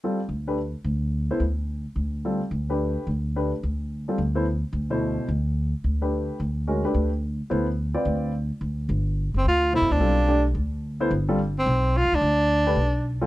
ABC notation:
X:1
M:4/4
L:1/8
Q:"Swing" 1/4=217
K:Gmix
V:1 name="Grand piano"
[G,CFA] z2 [A,DGB] z4 | z [B,EAc] z6 | [G,CFA] z2 [A,DGB]3 z2 | [A,DGB] z4 [G,CFA] z [B,EAc] |
z3 [B,,EAc]3 z2 | z3 [A,DGB]3 z2 | [_A,^C^F_B] [=A,DG=B]2 z3 [B,EA=c] z | z [CFBd]3 z4 |
z6 [B,,EAc]2 | [G,CFA]2 [A,DGd] z4 [B,EAc] | z [G,CFA] z6 | z3 [A,DGB] z3 [G,CFA] |]
V:2 name="Tenor saxophone"
z8 | z8 | z8 | z8 |
z8 | z8 | z8 | z8 |
z3 C F2 E D- | D3 z4 z | z3 C3 F D- | D6- D z |]
V:3 name="Upright bass" clef=bass
z2 D,,3 z D,,2- | D,, z D,,3 z D,,2- | D,, z D,,3 z D,,2- | D,, z D,,3 z D,,2- |
D,, z D,,3 z D,,2- | D,, z D,,3 z D,,2- | D,, z D,,3 z D,,2- | D,, z D,,3 z D,,2 |
G,,,3 ^F,,, D,,2- (3D,, =F,, D,, | B,,,4 D,,4 | G,,,4 B,,,2- (3B,,, F,, D,, | D,,4 B,,,4 |]